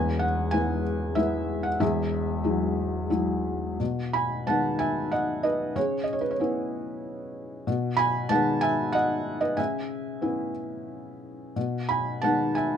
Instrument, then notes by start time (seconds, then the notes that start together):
felt piano
Already playing: E1 E2 B4 G#5
0.19 F#5
0.51 G#3 B3 E4 G#5
1.15 G#3 B3 E4 E5
1.63 F#5
1.80 E1 E2 G#4 E5
2.44 F#3 G#3 E4
3.10 F#3 G#3 E4
3.80 B2
4.13 G#5 B5
4.47 D#3 G#3 B3 F#5 A5
4.79 E5 G#5
5.12 D#5 F#5
5.43 B4 D#5
5.76 C#3 G#4 C#5
6.04 D#5
6.13 C#5
6.21 B4
6.31 C#5
6.40 B3 C#4 E4
7.67 B2
7.97 G#5 B5
8.29 D#3 G#3 B3 F#5 A5
8.61 E5 G#5
8.92 D#5 F#5
9.41 B4 D#5
9.57 C#3 E5 G#5
10.22 B3 C#4 E4
11.56 B2
11.89 G#5 B5
12.22 D#3 G#3 B3 F#5 A5
12.55 E5 G#5